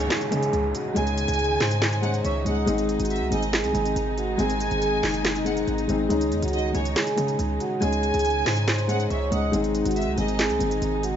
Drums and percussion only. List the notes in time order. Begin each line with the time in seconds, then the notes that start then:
0.10 snare, clap, closed hi-hat
0.21 closed hi-hat
0.32 closed hi-hat
0.43 closed hi-hat
0.53 closed hi-hat
0.75 closed hi-hat
0.96 closed hi-hat
1.07 closed hi-hat
1.18 closed hi-hat
1.28 closed hi-hat
1.34 closed hi-hat
1.39 closed hi-hat
1.44 closed hi-hat
1.60 snare, clap, open hi-hat
1.71 closed hi-hat
1.82 snare, clap, closed hi-hat
1.93 closed hi-hat
2.03 closed hi-hat
2.14 closed hi-hat
2.25 closed hi-hat
2.46 closed hi-hat
2.67 closed hi-hat
2.78 closed hi-hat
2.89 closed hi-hat
3.00 closed hi-hat
3.05 closed hi-hat
3.10 closed hi-hat
3.16 closed hi-hat
3.32 closed hi-hat
3.43 closed hi-hat
3.53 snare, clap, closed hi-hat
3.64 closed hi-hat
3.75 closed hi-hat
3.85 closed hi-hat
3.96 closed hi-hat
4.18 closed hi-hat
4.39 closed hi-hat
4.50 closed hi-hat
4.60 closed hi-hat
4.71 closed hi-hat
4.82 closed hi-hat
5.03 snare, clap, open hi-hat
5.14 closed hi-hat
5.25 snare, clap, closed hi-hat
5.35 closed hi-hat
5.46 closed hi-hat
5.57 closed hi-hat
5.68 closed hi-hat
5.78 closed hi-hat
5.89 closed hi-hat
6.10 closed hi-hat
6.21 closed hi-hat
6.32 closed hi-hat
6.42 closed hi-hat
6.48 closed hi-hat
6.53 closed hi-hat
6.59 closed hi-hat
6.75 closed hi-hat
6.85 closed hi-hat
6.96 snare, clap, closed hi-hat
7.07 closed hi-hat
7.18 closed hi-hat
7.28 closed hi-hat
7.39 closed hi-hat
7.60 closed hi-hat
7.82 closed hi-hat
7.93 closed hi-hat
8.03 closed hi-hat
8.14 closed hi-hat
8.19 closed hi-hat
8.25 closed hi-hat
8.30 closed hi-hat
8.46 snare, clap, open hi-hat
8.57 closed hi-hat
8.68 snare, clap, closed hi-hat
8.78 closed hi-hat
8.89 closed hi-hat
9.00 closed hi-hat
9.11 closed hi-hat
9.32 closed hi-hat
9.53 closed hi-hat
9.64 closed hi-hat
9.75 closed hi-hat
9.86 closed hi-hat
9.91 closed hi-hat
9.96 closed hi-hat
10.02 closed hi-hat
10.18 closed hi-hat
10.28 closed hi-hat
10.39 snare, clap, closed hi-hat
10.50 closed hi-hat
10.60 closed hi-hat
10.71 closed hi-hat
10.82 closed hi-hat
11.03 closed hi-hat